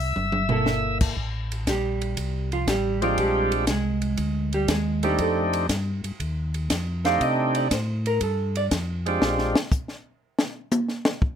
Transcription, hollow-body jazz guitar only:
0, 0, Header, 1, 2, 480
1, 0, Start_track
1, 0, Tempo, 502513
1, 1122, Time_signature, 4, 2, 24, 8
1, 10847, End_track
2, 0, Start_track
2, 0, Title_t, "Hollow-body jazz guitar"
2, 0, Program_c, 0, 26
2, 482, Note_on_c, 0, 58, 52
2, 495, Note_on_c, 0, 64, 58
2, 497, Note_on_c, 0, 69, 60
2, 1087, Note_off_c, 0, 58, 0
2, 1093, Note_off_c, 0, 64, 0
2, 1094, Note_off_c, 0, 69, 0
2, 1615, Note_on_c, 0, 67, 77
2, 1621, Note_on_c, 0, 55, 53
2, 2381, Note_off_c, 0, 67, 0
2, 2384, Note_off_c, 0, 55, 0
2, 2416, Note_on_c, 0, 65, 74
2, 2421, Note_on_c, 0, 53, 59
2, 2559, Note_off_c, 0, 65, 0
2, 2561, Note_off_c, 0, 53, 0
2, 2571, Note_on_c, 0, 67, 92
2, 2577, Note_on_c, 0, 55, 74
2, 2887, Note_off_c, 0, 55, 0
2, 2888, Note_off_c, 0, 67, 0
2, 2891, Note_on_c, 0, 65, 70
2, 2897, Note_on_c, 0, 53, 61
2, 3036, Note_off_c, 0, 65, 0
2, 3039, Note_off_c, 0, 53, 0
2, 3056, Note_on_c, 0, 67, 70
2, 3061, Note_on_c, 0, 55, 52
2, 3370, Note_off_c, 0, 67, 0
2, 3373, Note_off_c, 0, 55, 0
2, 3534, Note_on_c, 0, 56, 62
2, 3539, Note_on_c, 0, 68, 74
2, 4301, Note_off_c, 0, 68, 0
2, 4302, Note_off_c, 0, 56, 0
2, 4339, Note_on_c, 0, 67, 84
2, 4344, Note_on_c, 0, 55, 70
2, 4481, Note_off_c, 0, 67, 0
2, 4483, Note_off_c, 0, 55, 0
2, 4497, Note_on_c, 0, 56, 71
2, 4501, Note_on_c, 0, 68, 75
2, 4811, Note_off_c, 0, 68, 0
2, 4812, Note_off_c, 0, 56, 0
2, 4817, Note_on_c, 0, 67, 82
2, 4824, Note_on_c, 0, 55, 62
2, 4959, Note_off_c, 0, 67, 0
2, 4963, Note_off_c, 0, 55, 0
2, 4983, Note_on_c, 0, 57, 66
2, 4983, Note_on_c, 0, 69, 73
2, 5174, Note_off_c, 0, 69, 0
2, 5177, Note_off_c, 0, 57, 0
2, 6739, Note_on_c, 0, 77, 91
2, 6881, Note_off_c, 0, 77, 0
2, 6907, Note_on_c, 0, 75, 83
2, 7216, Note_off_c, 0, 75, 0
2, 7222, Note_on_c, 0, 74, 78
2, 7363, Note_off_c, 0, 74, 0
2, 7384, Note_on_c, 0, 72, 72
2, 7695, Note_off_c, 0, 72, 0
2, 7708, Note_on_c, 0, 70, 87
2, 7845, Note_off_c, 0, 70, 0
2, 7863, Note_on_c, 0, 69, 69
2, 8174, Note_off_c, 0, 69, 0
2, 8186, Note_on_c, 0, 74, 96
2, 8271, Note_off_c, 0, 74, 0
2, 10847, End_track
0, 0, End_of_file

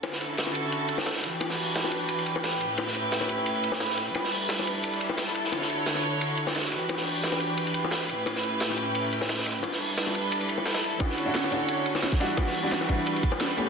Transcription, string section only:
0, 0, Header, 1, 2, 480
1, 0, Start_track
1, 0, Key_signature, 2, "major"
1, 0, Tempo, 342857
1, 48, Time_signature, 4, 2, 24, 8
1, 19169, End_track
2, 0, Start_track
2, 0, Title_t, "String section"
2, 0, Program_c, 0, 48
2, 42, Note_on_c, 0, 69, 83
2, 43, Note_on_c, 0, 64, 70
2, 44, Note_on_c, 0, 61, 70
2, 45, Note_on_c, 0, 50, 75
2, 45, Note_on_c, 0, 66, 68
2, 1708, Note_off_c, 0, 64, 0
2, 1708, Note_off_c, 0, 69, 0
2, 1709, Note_off_c, 0, 50, 0
2, 1709, Note_off_c, 0, 61, 0
2, 1709, Note_off_c, 0, 66, 0
2, 1725, Note_on_c, 0, 62, 68
2, 1725, Note_on_c, 0, 66, 65
2, 1726, Note_on_c, 0, 52, 72
2, 1726, Note_on_c, 0, 71, 82
2, 1727, Note_on_c, 0, 67, 67
2, 3627, Note_off_c, 0, 52, 0
2, 3627, Note_off_c, 0, 62, 0
2, 3627, Note_off_c, 0, 66, 0
2, 3648, Note_on_c, 0, 45, 78
2, 3648, Note_on_c, 0, 61, 72
2, 3649, Note_on_c, 0, 64, 66
2, 5766, Note_off_c, 0, 67, 0
2, 5786, Note_off_c, 0, 45, 0
2, 5786, Note_off_c, 0, 61, 0
2, 5786, Note_off_c, 0, 64, 0
2, 5804, Note_on_c, 0, 55, 78
2, 5804, Note_on_c, 0, 62, 71
2, 5806, Note_on_c, 0, 69, 72
2, 5807, Note_on_c, 0, 64, 70
2, 7670, Note_off_c, 0, 71, 0
2, 7706, Note_off_c, 0, 55, 0
2, 7706, Note_off_c, 0, 62, 0
2, 7729, Note_on_c, 0, 66, 72
2, 7730, Note_on_c, 0, 73, 84
2, 7731, Note_on_c, 0, 50, 75
2, 9370, Note_off_c, 0, 69, 0
2, 9371, Note_off_c, 0, 64, 0
2, 9392, Note_off_c, 0, 50, 0
2, 9392, Note_off_c, 0, 73, 0
2, 9406, Note_on_c, 0, 71, 86
2, 9407, Note_on_c, 0, 52, 72
2, 9407, Note_on_c, 0, 62, 67
2, 9407, Note_on_c, 0, 67, 71
2, 11292, Note_off_c, 0, 66, 0
2, 11308, Note_off_c, 0, 52, 0
2, 11308, Note_off_c, 0, 62, 0
2, 11308, Note_off_c, 0, 67, 0
2, 11325, Note_on_c, 0, 45, 78
2, 11326, Note_on_c, 0, 64, 73
2, 11326, Note_on_c, 0, 67, 69
2, 11327, Note_on_c, 0, 61, 69
2, 13446, Note_off_c, 0, 71, 0
2, 13464, Note_off_c, 0, 45, 0
2, 13465, Note_off_c, 0, 61, 0
2, 13465, Note_off_c, 0, 64, 0
2, 13465, Note_off_c, 0, 67, 0
2, 13484, Note_on_c, 0, 55, 78
2, 13484, Note_on_c, 0, 62, 72
2, 13484, Note_on_c, 0, 71, 83
2, 13485, Note_on_c, 0, 69, 74
2, 13487, Note_on_c, 0, 64, 74
2, 15386, Note_off_c, 0, 55, 0
2, 15386, Note_off_c, 0, 62, 0
2, 15386, Note_off_c, 0, 71, 0
2, 15402, Note_on_c, 0, 50, 79
2, 15402, Note_on_c, 0, 66, 72
2, 15402, Note_on_c, 0, 73, 83
2, 17050, Note_off_c, 0, 69, 0
2, 17051, Note_off_c, 0, 64, 0
2, 17068, Note_off_c, 0, 50, 0
2, 17068, Note_off_c, 0, 73, 0
2, 17090, Note_on_c, 0, 62, 67
2, 17092, Note_on_c, 0, 52, 76
2, 17092, Note_on_c, 0, 55, 68
2, 17092, Note_on_c, 0, 71, 84
2, 18969, Note_off_c, 0, 66, 0
2, 18989, Note_off_c, 0, 62, 0
2, 18990, Note_off_c, 0, 52, 0
2, 19004, Note_on_c, 0, 45, 76
2, 19004, Note_on_c, 0, 64, 71
2, 19008, Note_on_c, 0, 61, 71
2, 19169, Note_off_c, 0, 45, 0
2, 19169, Note_off_c, 0, 55, 0
2, 19169, Note_off_c, 0, 61, 0
2, 19169, Note_off_c, 0, 64, 0
2, 19169, Note_off_c, 0, 71, 0
2, 19169, End_track
0, 0, End_of_file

